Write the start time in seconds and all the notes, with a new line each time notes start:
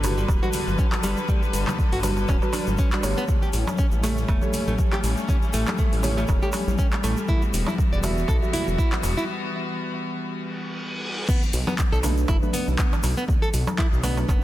Already playing: G1 D3 G3 A4 B4
0.04 G3 F#4 B4, open hi-hat, muted conga, darbuka tek, low conga, shaker
0.18 G3, shaker
0.28 D1, kick, muted conga, darbuka tek, shaker
0.42 G3 F#4 B4, high conga, shaker
0.53 open hi-hat, low conga, shaker
0.67 G1, muted conga, high conga, shaker
0.78 C#4, kick, shaker
0.92 clap, muted conga, darbuka tek, high conga, shaker
1.03 G1 G3, open hi-hat, darbuka ka, shaker
1.17 muted conga, shaker
1.28 G3, kick, low conga, shaker
1.43 muted conga, shaker
1.53 G1, open hi-hat, shaker
1.67 G3, clap, darbuka tek, high conga, low conga, shaker
1.79 kick, muted conga, shaker
1.92 G1 F#4, open hi-hat, shaker
2.03 G3 F#4 B4, open hi-hat, muted conga, darbuka tek, high conga, low conga, shaker
2.17 darbuka ka, shaker
2.28 D1 C#4, kick, darbuka tek, shaker
2.42 G3 F#4 B4, darbuka ka, shaker
2.53 D4, open hi-hat, darbuka ka, darbuka tek, high conga, shaker
2.67 G1, muted conga, high conga, shaker
2.78 C#4, kick, shaker
2.92 G3 D4 F#4 B4, clap, darbuka ka, muted conga, shaker
3.03 G1 A3 G4 C#5, open hi-hat, darbuka tek, shaker
3.17 B3, muted conga, shaker
3.28 G3 A3 C#4, kick, low conga, shaker
3.42 G4, muted conga, shaker
3.53 A1, open hi-hat, shaker
3.67 high conga, darbuka tek, shaker
3.78 C#4, kick, muted conga, shaker
3.92 A1, shaker
4.03 A3 G4 C#5, open hi-hat, muted conga, darbuka tek, low conga, shaker
4.17 shaker
4.28 E1 A3, kick, darbuka tek, shaker
4.42 A3 G4 C#5, high conga, shaker
4.54 open hi-hat, low conga, shaker
4.67 A1 A3, muted conga, high conga, shaker
4.79 kick, shaker
4.92 G4, clap, muted conga, darbuka tek, high conga, shaker
5.03 A1, open hi-hat, darbuka ka, shaker
5.17 muted conga, shaker
5.29 C#4, kick, low conga, shaker
5.42 muted conga, shaker
5.53 A1 A3, open hi-hat, shaker
5.67 clap, high conga, darbuka tek, shaker
5.78 A3, kick, muted conga, shaker
5.92 A1, open hi-hat, shaker
6.03 A3 G4 C#5, open hi-hat, muted conga, darbuka tek, high conga, low conga, shaker
6.17 A3, darbuka ka, shaker
6.28 E1, kick, muted conga, darbuka tek, shaker
6.42 A3 G4 C#5, darbuka ka, shaker
6.53 open hi-hat, darbuka ka, darbuka tek, high conga, shaker
6.67 A1, muted conga, high conga, shaker
6.79 C#4, kick, shaker
6.92 clap, darbuka ka, muted conga, shaker
7.04 A1 A3, open hi-hat, darbuka tek, shaker
7.17 muted conga, shaker
7.28 E3 B3 E4 F#4, kick, low conga, shaker
7.42 muted conga, shaker
7.53 E1, open hi-hat, shaker
7.67 E4, darbuka tek, high conga, shaker
7.78 kick, muted conga, shaker
7.92 E1 D5, shaker
8.03 G3 F#4 E5, open hi-hat, muted conga, darbuka tek, low conga, shaker
8.18 shaker
8.28 B1 A4, kick, darbuka tek, shaker
8.42 G3 F#4 E5, high conga, shaker
8.53 E4, open hi-hat, low conga, shaker
8.67 E1, muted conga, high conga, shaker
8.78 E4, kick, shaker
8.92 clap, muted conga, darbuka tek, high conga, shaker
9.03 E1, open hi-hat, darbuka ka, shaker
9.17 E4, muted conga, shaker
10.28 reverse cymbal
11.29 B3, kick, crash, low conga, shaker
11.43 muted conga, shaker
11.53 B1, open hi-hat, shaker
11.67 B3, darbuka tek, high conga, shaker
11.78 kick, clap, shaker
11.92 B1 A4, shaker
12.03 A3 D4 B4, open hi-hat, muted conga, darbuka tek, low conga, shaker
12.17 shaker
12.28 F#1 E4, kick, muted conga, darbuka tek, shaker
12.42 A3 D4 B4, high conga, shaker
12.53 B3, open hi-hat, low conga, shaker
12.67 B1, muted conga, high conga, shaker
12.78 B3, kick, clap, shaker
12.92 muted conga, high conga, darbuka tek, shaker
13.03 B1, open hi-hat, darbuka ka, shaker
13.17 B3, muted conga, shaker
13.28 kick, low conga, shaker
13.42 A4, muted conga, shaker
13.53 B1, open hi-hat, shaker
13.67 high conga, darbuka tek, shaker
13.78 E4, kick, clap, muted conga, shaker
13.92 B1, shaker
14.03 A3 B3 D4 B4, open hi-hat, muted conga, darbuka tek, high conga, low conga, shaker
14.17 darbuka ka, shaker
14.28 F#1 B3, kick, muted conga, darbuka tek, shaker